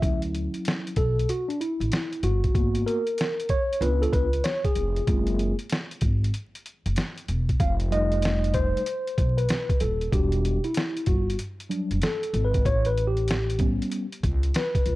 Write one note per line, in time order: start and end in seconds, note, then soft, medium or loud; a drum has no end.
0.00 0.46 D2 loud
0.00 0.92 F#3 soft
0.00 0.93 C#4 soft
0.00 0.93 E4 medium
0.00 0.21 E5 medium
0.00 kick loud
0.00 closed hi-hat medium
0.22 closed hi-hat medium
0.35 closed hi-hat medium
0.54 closed hi-hat soft
0.65 snare loud
0.65 closed hi-hat medium
0.87 closed hi-hat medium
0.96 1.23 B1 medium
0.96 1.30 A4 medium
0.96 kick medium
0.96 closed hi-hat medium
1.19 closed hi-hat medium
1.29 1.48 F#4 medium
1.29 closed hi-hat medium
1.48 1.60 D4 medium
1.48 closed hi-hat medium
1.61 2.25 E4 medium
1.61 closed hi-hat medium
1.80 1.90 A1 medium
1.80 closed hi-hat medium
1.92 snare loud
1.92 closed hi-hat medium
2.13 closed hi-hat medium
2.23 2.50 G1 medium
2.23 2.54 F#4 medium
2.23 closed hi-hat medium
2.44 kick medium
2.44 closed hi-hat medium
2.54 2.81 G#1 medium
2.54 3.00 A#3 medium
2.54 3.00 B3 soft
2.54 3.00 F#4 medium
2.54 kick loud
2.54 closed hi-hat medium
2.75 closed hi-hat medium
2.86 3.51 A#4 loud
2.86 closed hi-hat medium
3.07 closed hi-hat soft
3.18 snare loud
3.18 closed hi-hat medium
3.40 closed hi-hat medium
3.49 3.82 C#5 loud
3.49 kick medium
3.49 closed hi-hat medium
3.73 closed hi-hat medium
3.81 4.07 C#2 loud
3.81 4.26 B3 medium
3.81 4.27 D4 medium
3.81 4.27 F4 medium
3.81 4.02 B4 loud
3.81 closed hi-hat medium
4.02 4.13 A4 medium
4.02 closed hi-hat soft
4.13 4.39 C#2 medium
4.13 4.45 B4 loud
4.13 kick loud
4.13 closed hi-hat medium
4.33 closed hi-hat medium
4.44 4.63 C#5 medium
4.44 snare loud
4.44 closed hi-hat medium
4.64 5.55 G#4 medium
4.64 kick medium
4.64 closed hi-hat medium
4.75 5.02 F1 medium
4.75 closed hi-hat medium
4.96 closed hi-hat soft
5.07 5.51 F#1 loud
5.07 5.53 G#3 medium
5.07 5.53 A#3 soft
5.07 5.53 C4 soft
5.07 5.53 F4 medium
5.07 kick loud
5.07 closed hi-hat medium
5.27 closed hi-hat medium
5.39 closed hi-hat medium
5.59 closed hi-hat soft
5.70 snare loud
5.70 closed hi-hat medium
5.91 closed hi-hat medium
6.01 6.28 G#1 medium
6.01 kick medium
6.01 closed hi-hat medium
6.24 closed hi-hat medium
6.34 closed hi-hat medium
6.55 closed hi-hat soft
6.66 closed hi-hat medium
6.86 6.95 F#1 medium
6.86 closed hi-hat medium
6.96 snare loud
6.96 closed hi-hat medium
7.18 closed hi-hat medium
7.28 7.55 E1 medium
7.28 closed hi-hat medium
7.49 kick medium
7.49 closed hi-hat soft
7.60 8.71 F1 loud
7.60 7.74 F5 loud
7.60 kick loud
7.60 closed hi-hat medium
7.80 closed hi-hat medium
7.91 8.82 G3 medium
7.91 8.82 A3 soft
7.91 8.82 D#4 medium
7.91 8.57 D#5 loud
7.91 closed hi-hat medium
8.12 closed hi-hat soft
8.22 snare loud
8.22 closed hi-hat medium
8.44 closed hi-hat medium
8.54 9.41 C5 loud
8.54 kick medium
8.54 closed hi-hat medium
8.77 closed hi-hat medium
8.86 closed hi-hat medium
9.07 closed hi-hat soft
9.18 9.44 B1 medium
9.18 kick medium
9.18 closed hi-hat medium
9.38 9.82 B4 medium
9.38 closed hi-hat medium
9.49 snare loud
9.49 closed hi-hat medium
9.69 kick medium
9.69 closed hi-hat medium
9.80 10.07 D#1 medium
9.80 10.13 A4 medium
9.80 closed hi-hat medium
10.01 closed hi-hat soft
10.12 10.56 E1 medium
10.12 10.58 G3 soft
10.12 10.58 D4 medium
10.12 10.58 F#4 medium
10.12 10.66 G4 medium
10.12 kick loud
10.12 closed hi-hat medium
10.32 closed hi-hat medium
10.45 closed hi-hat medium
10.64 11.09 E4 medium
10.64 closed hi-hat soft
10.74 snare loud
10.74 closed hi-hat medium
10.97 closed hi-hat medium
11.06 11.34 G1 medium
11.06 11.36 F#4 medium
11.06 kick medium
11.06 closed hi-hat medium
11.30 closed hi-hat medium
11.39 closed hi-hat medium
11.60 closed hi-hat medium
11.69 11.98 F#3 soft
11.69 11.99 G3 soft
11.69 11.99 D4 medium
11.69 closed hi-hat medium
11.91 12.00 F#1 medium
11.91 closed hi-hat medium
12.02 12.46 A4 medium
12.02 snare loud
12.02 closed hi-hat medium
12.23 closed hi-hat medium
12.33 12.60 G#1 medium
12.33 closed hi-hat medium
12.45 12.66 B4 medium
12.54 kick medium
12.54 closed hi-hat medium
12.65 13.76 A1 loud
12.65 12.87 C#5 loud
12.65 kick loud
12.65 closed hi-hat medium
12.85 13.06 B4 loud
12.85 closed hi-hat medium
12.98 closed hi-hat medium
13.07 13.67 G4 medium
13.17 closed hi-hat soft
13.28 snare loud
13.28 closed hi-hat medium
13.50 closed hi-hat medium
13.59 14.05 G3 medium
13.59 14.05 B3 medium
13.59 14.06 C#4 medium
13.59 kick medium
13.59 closed hi-hat medium
13.82 closed hi-hat medium
13.91 closed hi-hat medium
14.12 closed hi-hat soft
14.23 14.50 C#2 medium
14.23 kick medium
14.23 closed hi-hat medium
14.43 closed hi-hat medium
14.54 14.96 B4 medium
14.54 snare loud
14.54 closed hi-hat medium
14.75 kick loud
14.75 closed hi-hat medium
14.86 14.96 C#2 medium
14.86 closed hi-hat medium